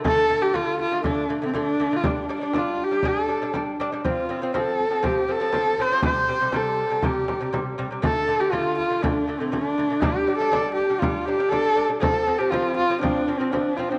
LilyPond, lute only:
\new Staff \with { instrumentName = "Lute" } { \clef bass \time 4/4 \tempo 4 = 120 <d a>8 <d a>16 <d a>16 <d a>8 r16 <d a>16 <d a>8 <d a>16 <d a>16 <d a>8 <d a>16 <d a>16 | <g d'>8 <g d'>16 <g d'>16 <g d'>8 r16 <g d'>16 <g d'>8 <g d'>16 <g d'>16 <g d'>8 <g d'>16 <g d'>16 | <f c'>8 <f c'>16 <f c'>16 <f c'>8 r16 <f c'>16 <f c'>8 <f c'>16 <f c'>16 <f c'>8 <f c'>16 <f c'>16 | <c g>8 <c g>16 <c g>16 <c g>8 r16 <c g>16 <c g>8 <c g>16 <c g>16 <c g>8 <c g>16 <c g>16 |
<d a>8 <d a>16 <d a>16 <d a>8 r16 <d a>16 <d a>8 <d a>16 <d a>16 <d a>8 <d a>16 <d a>16 | <g d'>8 <g d'>16 <g d'>16 <g d'>8 r16 <g d'>16 <g d'>8 <g d'>16 <g d'>16 <g d'>8 <g d'>16 <g d'>16 | <f c'>8 <f c'>16 <f c'>16 <f c'>8 r16 <f c'>16 <f c'>8 <f c'>16 <f c'>16 <f c'>8 <f c'>16 <f c'>16 | }